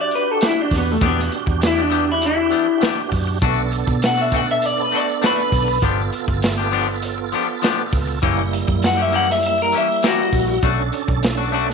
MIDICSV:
0, 0, Header, 1, 7, 480
1, 0, Start_track
1, 0, Key_signature, 2, "minor"
1, 0, Tempo, 600601
1, 815, Time_signature, 4, 2, 24, 8
1, 9380, End_track
2, 0, Start_track
2, 0, Title_t, "Clean electric guitar"
2, 0, Program_c, 0, 27
2, 10, Note_on_c, 0, 74, 89
2, 107, Note_off_c, 0, 74, 0
2, 122, Note_on_c, 0, 71, 90
2, 251, Note_off_c, 0, 71, 0
2, 251, Note_on_c, 0, 69, 100
2, 348, Note_off_c, 0, 69, 0
2, 373, Note_on_c, 0, 64, 97
2, 492, Note_off_c, 0, 64, 0
2, 492, Note_on_c, 0, 62, 76
2, 589, Note_off_c, 0, 62, 0
2, 617, Note_on_c, 0, 59, 90
2, 733, Note_off_c, 0, 59, 0
2, 733, Note_on_c, 0, 57, 74
2, 845, Note_off_c, 0, 57, 0
2, 845, Note_on_c, 0, 59, 113
2, 1064, Note_off_c, 0, 59, 0
2, 1330, Note_on_c, 0, 64, 92
2, 1452, Note_off_c, 0, 64, 0
2, 1452, Note_on_c, 0, 62, 97
2, 1670, Note_off_c, 0, 62, 0
2, 1692, Note_on_c, 0, 64, 87
2, 1789, Note_off_c, 0, 64, 0
2, 1806, Note_on_c, 0, 64, 100
2, 2258, Note_off_c, 0, 64, 0
2, 3242, Note_on_c, 0, 78, 92
2, 3367, Note_off_c, 0, 78, 0
2, 3367, Note_on_c, 0, 76, 87
2, 3487, Note_off_c, 0, 76, 0
2, 3487, Note_on_c, 0, 78, 103
2, 3593, Note_off_c, 0, 78, 0
2, 3606, Note_on_c, 0, 76, 86
2, 3722, Note_off_c, 0, 76, 0
2, 3722, Note_on_c, 0, 74, 83
2, 3853, Note_off_c, 0, 74, 0
2, 3853, Note_on_c, 0, 71, 92
2, 3966, Note_off_c, 0, 71, 0
2, 3966, Note_on_c, 0, 74, 82
2, 4185, Note_off_c, 0, 74, 0
2, 4204, Note_on_c, 0, 71, 107
2, 4657, Note_off_c, 0, 71, 0
2, 7080, Note_on_c, 0, 78, 101
2, 7207, Note_off_c, 0, 78, 0
2, 7207, Note_on_c, 0, 76, 94
2, 7307, Note_off_c, 0, 76, 0
2, 7318, Note_on_c, 0, 78, 99
2, 7428, Note_off_c, 0, 78, 0
2, 7446, Note_on_c, 0, 76, 82
2, 7546, Note_off_c, 0, 76, 0
2, 7564, Note_on_c, 0, 76, 94
2, 7671, Note_off_c, 0, 76, 0
2, 7689, Note_on_c, 0, 70, 93
2, 7787, Note_off_c, 0, 70, 0
2, 7813, Note_on_c, 0, 76, 88
2, 8028, Note_off_c, 0, 76, 0
2, 8046, Note_on_c, 0, 66, 91
2, 8497, Note_off_c, 0, 66, 0
2, 9380, End_track
3, 0, Start_track
3, 0, Title_t, "Tonewheel organ"
3, 0, Program_c, 1, 16
3, 0, Note_on_c, 1, 62, 75
3, 0, Note_on_c, 1, 66, 67
3, 0, Note_on_c, 1, 67, 77
3, 776, Note_off_c, 1, 62, 0
3, 779, Note_off_c, 1, 66, 0
3, 783, Note_off_c, 1, 67, 0
3, 809, Note_on_c, 1, 62, 63
3, 817, Note_on_c, 1, 66, 58
3, 820, Note_on_c, 1, 67, 72
3, 2702, Note_off_c, 1, 62, 0
3, 2706, Note_off_c, 1, 66, 0
3, 2708, Note_off_c, 1, 67, 0
3, 2733, Note_on_c, 1, 59, 76
3, 2739, Note_on_c, 1, 62, 71
3, 2744, Note_on_c, 1, 69, 80
3, 4624, Note_off_c, 1, 59, 0
3, 4627, Note_off_c, 1, 62, 0
3, 4630, Note_off_c, 1, 69, 0
3, 4651, Note_on_c, 1, 59, 64
3, 4658, Note_on_c, 1, 65, 59
3, 4665, Note_on_c, 1, 69, 61
3, 6542, Note_off_c, 1, 59, 0
3, 6545, Note_off_c, 1, 65, 0
3, 6549, Note_off_c, 1, 69, 0
3, 6570, Note_on_c, 1, 58, 77
3, 6573, Note_on_c, 1, 64, 72
3, 6582, Note_on_c, 1, 55, 88
3, 8460, Note_off_c, 1, 58, 0
3, 8462, Note_off_c, 1, 64, 0
3, 8466, Note_off_c, 1, 55, 0
3, 8488, Note_on_c, 1, 61, 67
3, 8491, Note_on_c, 1, 62, 55
3, 8500, Note_on_c, 1, 69, 76
3, 9380, Note_off_c, 1, 61, 0
3, 9380, Note_off_c, 1, 62, 0
3, 9380, Note_off_c, 1, 69, 0
3, 9380, End_track
4, 0, Start_track
4, 0, Title_t, "Clean electric guitar"
4, 0, Program_c, 2, 27
4, 807, Note_on_c, 2, 52, 69
4, 814, Note_on_c, 2, 59, 76
4, 817, Note_on_c, 2, 62, 76
4, 823, Note_on_c, 2, 67, 73
4, 959, Note_off_c, 2, 52, 0
4, 962, Note_off_c, 2, 59, 0
4, 964, Note_off_c, 2, 62, 0
4, 966, Note_off_c, 2, 67, 0
4, 1405, Note_on_c, 2, 67, 59
4, 1419, Note_on_c, 2, 62, 54
4, 1429, Note_on_c, 2, 59, 44
4, 1518, Note_off_c, 2, 59, 0
4, 1518, Note_on_c, 2, 52, 81
4, 1524, Note_off_c, 2, 62, 0
4, 1526, Note_off_c, 2, 67, 0
4, 1528, Note_on_c, 2, 59, 81
4, 1533, Note_on_c, 2, 62, 77
4, 1536, Note_on_c, 2, 67, 92
4, 1632, Note_off_c, 2, 67, 0
4, 1638, Note_off_c, 2, 62, 0
4, 1646, Note_off_c, 2, 59, 0
4, 1651, Note_off_c, 2, 52, 0
4, 1999, Note_on_c, 2, 52, 60
4, 2009, Note_on_c, 2, 59, 66
4, 2015, Note_on_c, 2, 62, 68
4, 2022, Note_on_c, 2, 67, 70
4, 2121, Note_off_c, 2, 67, 0
4, 2129, Note_off_c, 2, 62, 0
4, 2132, Note_off_c, 2, 52, 0
4, 2134, Note_off_c, 2, 59, 0
4, 2244, Note_on_c, 2, 52, 74
4, 2253, Note_on_c, 2, 59, 82
4, 2255, Note_on_c, 2, 62, 77
4, 2262, Note_on_c, 2, 67, 87
4, 2398, Note_off_c, 2, 52, 0
4, 2402, Note_off_c, 2, 59, 0
4, 2403, Note_off_c, 2, 62, 0
4, 2407, Note_off_c, 2, 67, 0
4, 2732, Note_on_c, 2, 57, 88
4, 2738, Note_on_c, 2, 62, 94
4, 2749, Note_on_c, 2, 66, 96
4, 2882, Note_off_c, 2, 57, 0
4, 2885, Note_off_c, 2, 62, 0
4, 2891, Note_off_c, 2, 66, 0
4, 3334, Note_on_c, 2, 66, 56
4, 3359, Note_on_c, 2, 62, 43
4, 3454, Note_off_c, 2, 66, 0
4, 3455, Note_off_c, 2, 62, 0
4, 3455, Note_on_c, 2, 57, 68
4, 3465, Note_on_c, 2, 62, 68
4, 3472, Note_on_c, 2, 66, 78
4, 3568, Note_off_c, 2, 66, 0
4, 3580, Note_off_c, 2, 57, 0
4, 3583, Note_off_c, 2, 62, 0
4, 3932, Note_on_c, 2, 57, 67
4, 3945, Note_on_c, 2, 62, 68
4, 3954, Note_on_c, 2, 66, 66
4, 4048, Note_off_c, 2, 66, 0
4, 4059, Note_off_c, 2, 57, 0
4, 4066, Note_off_c, 2, 62, 0
4, 4170, Note_on_c, 2, 57, 78
4, 4179, Note_on_c, 2, 62, 89
4, 4187, Note_on_c, 2, 66, 95
4, 4321, Note_off_c, 2, 57, 0
4, 4326, Note_off_c, 2, 62, 0
4, 4330, Note_off_c, 2, 66, 0
4, 4653, Note_on_c, 2, 53, 73
4, 4660, Note_on_c, 2, 59, 76
4, 4666, Note_on_c, 2, 62, 80
4, 4672, Note_on_c, 2, 67, 78
4, 4802, Note_off_c, 2, 53, 0
4, 4806, Note_off_c, 2, 59, 0
4, 4809, Note_off_c, 2, 62, 0
4, 4812, Note_off_c, 2, 67, 0
4, 5256, Note_on_c, 2, 67, 60
4, 5269, Note_on_c, 2, 62, 52
4, 5282, Note_on_c, 2, 59, 50
4, 5364, Note_off_c, 2, 59, 0
4, 5368, Note_on_c, 2, 53, 92
4, 5371, Note_off_c, 2, 62, 0
4, 5373, Note_on_c, 2, 59, 89
4, 5375, Note_off_c, 2, 67, 0
4, 5381, Note_on_c, 2, 62, 99
4, 5387, Note_on_c, 2, 67, 93
4, 5489, Note_off_c, 2, 67, 0
4, 5494, Note_off_c, 2, 62, 0
4, 5497, Note_off_c, 2, 53, 0
4, 5500, Note_off_c, 2, 59, 0
4, 5852, Note_on_c, 2, 53, 71
4, 5862, Note_on_c, 2, 59, 65
4, 5869, Note_on_c, 2, 62, 81
4, 5877, Note_on_c, 2, 67, 72
4, 5968, Note_off_c, 2, 67, 0
4, 5974, Note_off_c, 2, 62, 0
4, 5979, Note_off_c, 2, 53, 0
4, 5979, Note_off_c, 2, 59, 0
4, 6090, Note_on_c, 2, 53, 90
4, 6100, Note_on_c, 2, 59, 86
4, 6103, Note_on_c, 2, 62, 105
4, 6110, Note_on_c, 2, 67, 96
4, 6241, Note_off_c, 2, 53, 0
4, 6246, Note_off_c, 2, 59, 0
4, 6248, Note_off_c, 2, 62, 0
4, 6251, Note_off_c, 2, 67, 0
4, 6570, Note_on_c, 2, 52, 92
4, 6578, Note_on_c, 2, 58, 79
4, 6583, Note_on_c, 2, 61, 91
4, 6588, Note_on_c, 2, 67, 90
4, 6721, Note_off_c, 2, 52, 0
4, 6725, Note_off_c, 2, 58, 0
4, 6728, Note_off_c, 2, 61, 0
4, 6730, Note_off_c, 2, 67, 0
4, 7169, Note_on_c, 2, 67, 57
4, 7183, Note_on_c, 2, 61, 56
4, 7192, Note_on_c, 2, 58, 46
4, 7286, Note_off_c, 2, 58, 0
4, 7287, Note_on_c, 2, 52, 81
4, 7291, Note_off_c, 2, 61, 0
4, 7291, Note_off_c, 2, 67, 0
4, 7295, Note_on_c, 2, 58, 79
4, 7301, Note_on_c, 2, 61, 76
4, 7306, Note_on_c, 2, 67, 88
4, 7408, Note_off_c, 2, 67, 0
4, 7414, Note_off_c, 2, 61, 0
4, 7416, Note_off_c, 2, 52, 0
4, 7420, Note_off_c, 2, 58, 0
4, 7773, Note_on_c, 2, 52, 70
4, 7783, Note_on_c, 2, 58, 68
4, 7791, Note_on_c, 2, 61, 67
4, 7796, Note_on_c, 2, 67, 67
4, 7889, Note_off_c, 2, 67, 0
4, 7896, Note_off_c, 2, 61, 0
4, 7899, Note_off_c, 2, 52, 0
4, 7904, Note_off_c, 2, 58, 0
4, 8015, Note_on_c, 2, 52, 85
4, 8023, Note_on_c, 2, 58, 93
4, 8029, Note_on_c, 2, 61, 88
4, 8031, Note_on_c, 2, 67, 86
4, 8163, Note_off_c, 2, 52, 0
4, 8167, Note_off_c, 2, 58, 0
4, 8170, Note_off_c, 2, 61, 0
4, 8171, Note_off_c, 2, 67, 0
4, 8493, Note_on_c, 2, 57, 77
4, 8502, Note_on_c, 2, 62, 74
4, 8509, Note_on_c, 2, 66, 88
4, 8642, Note_off_c, 2, 57, 0
4, 8646, Note_off_c, 2, 62, 0
4, 8649, Note_off_c, 2, 66, 0
4, 9091, Note_on_c, 2, 66, 59
4, 9116, Note_on_c, 2, 62, 53
4, 9206, Note_on_c, 2, 57, 94
4, 9209, Note_off_c, 2, 62, 0
4, 9211, Note_off_c, 2, 66, 0
4, 9218, Note_on_c, 2, 62, 90
4, 9225, Note_on_c, 2, 66, 107
4, 9329, Note_off_c, 2, 66, 0
4, 9335, Note_off_c, 2, 57, 0
4, 9341, Note_off_c, 2, 62, 0
4, 9380, End_track
5, 0, Start_track
5, 0, Title_t, "Fingered electric bass"
5, 0, Program_c, 3, 33
5, 0, Note_on_c, 3, 52, 85
5, 88, Note_off_c, 3, 52, 0
5, 569, Note_on_c, 3, 40, 97
5, 780, Note_off_c, 3, 40, 0
5, 810, Note_on_c, 3, 40, 92
5, 1021, Note_off_c, 3, 40, 0
5, 1176, Note_on_c, 3, 40, 84
5, 2012, Note_off_c, 3, 40, 0
5, 2490, Note_on_c, 3, 42, 83
5, 2702, Note_off_c, 3, 42, 0
5, 2733, Note_on_c, 3, 35, 110
5, 3051, Note_off_c, 3, 35, 0
5, 3095, Note_on_c, 3, 47, 81
5, 3932, Note_off_c, 3, 47, 0
5, 4413, Note_on_c, 3, 35, 87
5, 4624, Note_off_c, 3, 35, 0
5, 4652, Note_on_c, 3, 31, 87
5, 4863, Note_off_c, 3, 31, 0
5, 5019, Note_on_c, 3, 31, 80
5, 5854, Note_off_c, 3, 31, 0
5, 6336, Note_on_c, 3, 37, 87
5, 6545, Note_off_c, 3, 37, 0
5, 6576, Note_on_c, 3, 30, 94
5, 6893, Note_off_c, 3, 30, 0
5, 6939, Note_on_c, 3, 42, 81
5, 7773, Note_off_c, 3, 42, 0
5, 8251, Note_on_c, 3, 34, 89
5, 8462, Note_off_c, 3, 34, 0
5, 8494, Note_on_c, 3, 35, 108
5, 8703, Note_off_c, 3, 35, 0
5, 8857, Note_on_c, 3, 35, 83
5, 9375, Note_off_c, 3, 35, 0
5, 9380, End_track
6, 0, Start_track
6, 0, Title_t, "Muted clean electric guitar strokes"
6, 1042, Note_on_c, 9, 29, 39
6, 1122, Note_off_c, 9, 29, 0
6, 1170, Note_on_c, 9, 29, 47
6, 1250, Note_off_c, 9, 29, 0
6, 1282, Note_on_c, 9, 29, 37
6, 1362, Note_off_c, 9, 29, 0
6, 1642, Note_on_c, 9, 29, 46
6, 1722, Note_off_c, 9, 29, 0
6, 1885, Note_on_c, 9, 29, 41
6, 1965, Note_off_c, 9, 29, 0
6, 2131, Note_on_c, 9, 29, 46
6, 2211, Note_off_c, 9, 29, 0
6, 2486, Note_on_c, 9, 29, 45
6, 2566, Note_off_c, 9, 29, 0
6, 2615, Note_on_c, 9, 29, 52
6, 2695, Note_off_c, 9, 29, 0
6, 2971, Note_on_c, 9, 29, 44
6, 3051, Note_off_c, 9, 29, 0
6, 3092, Note_on_c, 9, 29, 40
6, 3172, Note_off_c, 9, 29, 0
6, 3215, Note_on_c, 9, 29, 36
6, 3295, Note_off_c, 9, 29, 0
6, 3577, Note_on_c, 9, 29, 47
6, 3657, Note_off_c, 9, 29, 0
6, 3821, Note_on_c, 9, 29, 40
6, 3901, Note_off_c, 9, 29, 0
6, 4058, Note_on_c, 9, 29, 43
6, 4138, Note_off_c, 9, 29, 0
6, 4416, Note_on_c, 9, 29, 43
6, 4496, Note_off_c, 9, 29, 0
6, 4540, Note_on_c, 9, 29, 46
6, 4620, Note_off_c, 9, 29, 0
6, 4897, Note_on_c, 9, 29, 43
6, 4977, Note_off_c, 9, 29, 0
6, 5019, Note_on_c, 9, 29, 53
6, 5099, Note_off_c, 9, 29, 0
6, 5133, Note_on_c, 9, 29, 45
6, 5213, Note_off_c, 9, 29, 0
6, 5499, Note_on_c, 9, 29, 45
6, 5579, Note_off_c, 9, 29, 0
6, 5738, Note_on_c, 9, 29, 42
6, 5818, Note_off_c, 9, 29, 0
6, 5977, Note_on_c, 9, 29, 45
6, 6057, Note_off_c, 9, 29, 0
6, 6329, Note_on_c, 9, 29, 47
6, 6409, Note_off_c, 9, 29, 0
6, 6453, Note_on_c, 9, 29, 48
6, 6533, Note_off_c, 9, 29, 0
6, 6811, Note_on_c, 9, 29, 49
6, 6891, Note_off_c, 9, 29, 0
6, 6933, Note_on_c, 9, 29, 45
6, 7013, Note_off_c, 9, 29, 0
6, 7049, Note_on_c, 9, 29, 38
6, 7129, Note_off_c, 9, 29, 0
6, 7418, Note_on_c, 9, 29, 45
6, 7497, Note_off_c, 9, 29, 0
6, 7656, Note_on_c, 9, 29, 43
6, 7736, Note_off_c, 9, 29, 0
6, 7898, Note_on_c, 9, 29, 45
6, 7978, Note_off_c, 9, 29, 0
6, 8257, Note_on_c, 9, 29, 36
6, 8337, Note_off_c, 9, 29, 0
6, 8377, Note_on_c, 9, 29, 43
6, 8457, Note_off_c, 9, 29, 0
6, 8733, Note_on_c, 9, 29, 42
6, 8813, Note_off_c, 9, 29, 0
6, 8854, Note_on_c, 9, 29, 54
6, 8934, Note_off_c, 9, 29, 0
6, 8972, Note_on_c, 9, 29, 38
6, 9052, Note_off_c, 9, 29, 0
6, 9338, Note_on_c, 9, 29, 45
6, 9380, Note_off_c, 9, 29, 0
6, 9380, End_track
7, 0, Start_track
7, 0, Title_t, "Drums"
7, 90, Note_on_c, 9, 42, 65
7, 170, Note_off_c, 9, 42, 0
7, 328, Note_on_c, 9, 42, 85
7, 340, Note_on_c, 9, 38, 112
7, 407, Note_off_c, 9, 42, 0
7, 420, Note_off_c, 9, 38, 0
7, 570, Note_on_c, 9, 36, 79
7, 570, Note_on_c, 9, 46, 66
7, 583, Note_on_c, 9, 38, 28
7, 650, Note_off_c, 9, 36, 0
7, 650, Note_off_c, 9, 46, 0
7, 663, Note_off_c, 9, 38, 0
7, 810, Note_on_c, 9, 36, 108
7, 810, Note_on_c, 9, 42, 76
7, 890, Note_off_c, 9, 36, 0
7, 890, Note_off_c, 9, 42, 0
7, 950, Note_on_c, 9, 38, 36
7, 1030, Note_off_c, 9, 38, 0
7, 1053, Note_on_c, 9, 42, 68
7, 1133, Note_off_c, 9, 42, 0
7, 1175, Note_on_c, 9, 36, 79
7, 1255, Note_off_c, 9, 36, 0
7, 1292, Note_on_c, 9, 42, 84
7, 1305, Note_on_c, 9, 38, 108
7, 1372, Note_off_c, 9, 42, 0
7, 1385, Note_off_c, 9, 38, 0
7, 1532, Note_on_c, 9, 42, 56
7, 1612, Note_off_c, 9, 42, 0
7, 1773, Note_on_c, 9, 42, 82
7, 1853, Note_off_c, 9, 42, 0
7, 2012, Note_on_c, 9, 42, 63
7, 2092, Note_off_c, 9, 42, 0
7, 2248, Note_on_c, 9, 42, 72
7, 2261, Note_on_c, 9, 38, 106
7, 2328, Note_off_c, 9, 42, 0
7, 2341, Note_off_c, 9, 38, 0
7, 2492, Note_on_c, 9, 36, 78
7, 2492, Note_on_c, 9, 46, 66
7, 2572, Note_off_c, 9, 36, 0
7, 2572, Note_off_c, 9, 46, 0
7, 2732, Note_on_c, 9, 36, 111
7, 2732, Note_on_c, 9, 42, 79
7, 2811, Note_off_c, 9, 42, 0
7, 2812, Note_off_c, 9, 36, 0
7, 2971, Note_on_c, 9, 42, 70
7, 3050, Note_off_c, 9, 42, 0
7, 3096, Note_on_c, 9, 36, 80
7, 3176, Note_off_c, 9, 36, 0
7, 3214, Note_on_c, 9, 42, 92
7, 3227, Note_on_c, 9, 38, 113
7, 3294, Note_off_c, 9, 42, 0
7, 3307, Note_off_c, 9, 38, 0
7, 3451, Note_on_c, 9, 42, 65
7, 3452, Note_on_c, 9, 36, 73
7, 3531, Note_off_c, 9, 42, 0
7, 3532, Note_off_c, 9, 36, 0
7, 3692, Note_on_c, 9, 42, 86
7, 3772, Note_off_c, 9, 42, 0
7, 3932, Note_on_c, 9, 42, 68
7, 4012, Note_off_c, 9, 42, 0
7, 4175, Note_on_c, 9, 42, 85
7, 4187, Note_on_c, 9, 38, 96
7, 4254, Note_off_c, 9, 42, 0
7, 4267, Note_off_c, 9, 38, 0
7, 4412, Note_on_c, 9, 46, 77
7, 4413, Note_on_c, 9, 36, 78
7, 4492, Note_off_c, 9, 46, 0
7, 4493, Note_off_c, 9, 36, 0
7, 4652, Note_on_c, 9, 42, 82
7, 4654, Note_on_c, 9, 36, 110
7, 4732, Note_off_c, 9, 42, 0
7, 4734, Note_off_c, 9, 36, 0
7, 4895, Note_on_c, 9, 42, 66
7, 4975, Note_off_c, 9, 42, 0
7, 5018, Note_on_c, 9, 36, 78
7, 5098, Note_off_c, 9, 36, 0
7, 5134, Note_on_c, 9, 42, 76
7, 5147, Note_on_c, 9, 38, 117
7, 5214, Note_off_c, 9, 42, 0
7, 5227, Note_off_c, 9, 38, 0
7, 5374, Note_on_c, 9, 42, 53
7, 5454, Note_off_c, 9, 42, 0
7, 5613, Note_on_c, 9, 42, 78
7, 5693, Note_off_c, 9, 42, 0
7, 5854, Note_on_c, 9, 42, 61
7, 5934, Note_off_c, 9, 42, 0
7, 6095, Note_on_c, 9, 42, 79
7, 6108, Note_on_c, 9, 38, 114
7, 6175, Note_off_c, 9, 42, 0
7, 6188, Note_off_c, 9, 38, 0
7, 6335, Note_on_c, 9, 36, 79
7, 6338, Note_on_c, 9, 46, 76
7, 6415, Note_off_c, 9, 36, 0
7, 6418, Note_off_c, 9, 46, 0
7, 6576, Note_on_c, 9, 36, 113
7, 6577, Note_on_c, 9, 42, 78
7, 6656, Note_off_c, 9, 36, 0
7, 6657, Note_off_c, 9, 42, 0
7, 6820, Note_on_c, 9, 42, 74
7, 6900, Note_off_c, 9, 42, 0
7, 6939, Note_on_c, 9, 36, 76
7, 7019, Note_off_c, 9, 36, 0
7, 7054, Note_on_c, 9, 42, 93
7, 7067, Note_on_c, 9, 38, 104
7, 7134, Note_off_c, 9, 42, 0
7, 7147, Note_off_c, 9, 38, 0
7, 7293, Note_on_c, 9, 42, 68
7, 7373, Note_off_c, 9, 42, 0
7, 7432, Note_on_c, 9, 38, 35
7, 7512, Note_off_c, 9, 38, 0
7, 7533, Note_on_c, 9, 42, 82
7, 7613, Note_off_c, 9, 42, 0
7, 7772, Note_on_c, 9, 42, 64
7, 7852, Note_off_c, 9, 42, 0
7, 8011, Note_on_c, 9, 42, 81
7, 8024, Note_on_c, 9, 38, 112
7, 8091, Note_off_c, 9, 42, 0
7, 8104, Note_off_c, 9, 38, 0
7, 8251, Note_on_c, 9, 46, 72
7, 8253, Note_on_c, 9, 36, 82
7, 8331, Note_off_c, 9, 46, 0
7, 8333, Note_off_c, 9, 36, 0
7, 8491, Note_on_c, 9, 42, 77
7, 8494, Note_on_c, 9, 36, 101
7, 8571, Note_off_c, 9, 42, 0
7, 8574, Note_off_c, 9, 36, 0
7, 8732, Note_on_c, 9, 42, 66
7, 8812, Note_off_c, 9, 42, 0
7, 8858, Note_on_c, 9, 36, 72
7, 8938, Note_off_c, 9, 36, 0
7, 8974, Note_on_c, 9, 42, 78
7, 8987, Note_on_c, 9, 38, 116
7, 9054, Note_off_c, 9, 42, 0
7, 9067, Note_off_c, 9, 38, 0
7, 9213, Note_on_c, 9, 42, 56
7, 9293, Note_off_c, 9, 42, 0
7, 9350, Note_on_c, 9, 38, 38
7, 9380, Note_off_c, 9, 38, 0
7, 9380, End_track
0, 0, End_of_file